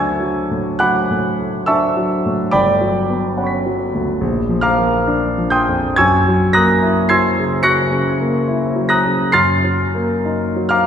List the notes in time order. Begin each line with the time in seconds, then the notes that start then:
Already playing: D2 F#3 A3 D4 G#5 A5 C#6 D6 E6 F#6 G#6 A6
0.20 F#3
0.51 A2
0.79 F#3 F#5 B5 D6 F#6
1.11 A2
1.39 A3
1.66 D4 E5 A5 C#6 E6
1.97 F#3
2.26 A2
2.51 G1 D5 G5 B5 D6
2.81 F#3
3.09 B3
3.37 C#4 F#5 B5
3.44 C#6 B6
3.66 F#3
3.94 D2
4.21 A#1
4.49 F3
4.61 F5 A#5 D6 F6
4.78 A#3
5.08 D4
5.38 F3
5.50 G5 C6 D#6 G6
5.69 F2
5.96 F#2 G#5 C#6 E6 G#6
6.28 F#3
6.53 A#3 A#5 D#6 F#6 A#6
6.82 E4
7.09 F#3 C6 E6 G#6 C7
7.39 C#3
7.63 F#3 C#6 F#6 A#6 C#7
7.92 C#3
8.20 A#3
8.48 E4
8.76 F#3
8.89 A#5 D#6 F#6 A#6
9.06 C#3
9.32 F#2 C6 F6 A6 C7
9.64 F#3
9.95 A#3
10.25 D#4
10.56 F#3
10.69 F5 A#5 D6 F6